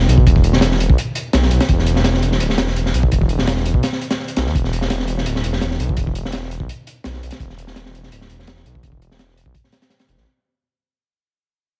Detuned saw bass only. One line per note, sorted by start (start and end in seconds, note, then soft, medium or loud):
0.08 0.24 B1 medium
0.27 0.52 E1 medium
0.54 0.88 E1 medium
0.90 0.97 B1 medium
1.33 1.49 B1 medium
1.51 1.60 B1 medium
1.69 2.39 E1 medium
2.41 2.57 D1 medium
2.58 2.93 E1 medium
2.94 3.10 B1 medium
3.12 3.38 E1 medium
3.39 3.73 E1 medium
3.74 3.82 B1 medium
4.37 4.48 B1 medium
4.46 4.54 E2 medium
4.55 5.25 E1 medium
5.26 5.42 D1 medium
5.44 5.78 E1 medium
5.80 5.96 B1 medium
5.97 6.23 E1 medium
6.25 6.59 E1 medium
6.60 6.68 B1 medium
7.05 7.21 B1 medium
7.23 7.31 B1 medium
7.40 8.10 E1 loud
8.12 8.28 D1 medium
8.30 8.64 E1 medium
8.66 8.82 B1 medium
8.83 9.09 E1 medium
9.11 9.45 E1 medium
9.46 9.54 B1 medium
10.08 10.17 E1 medium
10.18 10.25 A1 medium